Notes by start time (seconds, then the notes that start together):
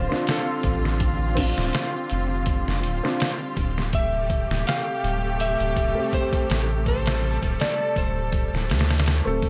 Already playing: D3 G3 C4 F4 G4 C5
0.09 C4 D4, snare
0.14 F4
0.27 A4, snare, closed hi-hat
0.63 A1, kick, closed hi-hat
0.85 snare
1.00 kick, closed hi-hat
1.35 C4 D4, kick, open hi-hat
1.40 F4
1.58 D1, snare
1.73 snare, closed hi-hat
2.10 F1, closed hi-hat
2.46 kick, closed hi-hat
2.68 F1, snare
2.83 D1, closed hi-hat
3.03 C4 D4 F4, snare
3.20 snare, closed hi-hat
3.57 D1, kick, closed hi-hat
3.78 snare
3.93 C3 A3 G4 E5, kick, closed hi-hat
4.30 kick, closed hi-hat
4.50 D1, snare
4.67 F5, snare, closed hi-hat
5.04 D1, closed hi-hat
5.40 E5, closed hi-hat
5.60 D1, closed hi-hat
5.76 D1, kick, closed hi-hat
5.95 A3 C4
5.99 G4
6.13 C5, kick, closed hi-hat
6.33 kick, closed hi-hat
6.50 A1, snare, closed hi-hat
6.85 A4 C5, kick, closed hi-hat
7.06 snare, closed hi-hat
7.43 D1, kick, closed hi-hat
7.60 D5, snare, closed hi-hat
7.96 D1 C5, kick, closed hi-hat
8.32 kick, closed hi-hat
8.53 D1, snare
8.69 D2, snare, closed hi-hat
8.79 snare, closed hi-hat
8.89 snare, closed hi-hat
8.98 snare, closed hi-hat
9.06 snare, closed hi-hat
9.25 D1 A3 C4 A4
9.42 kick, closed hi-hat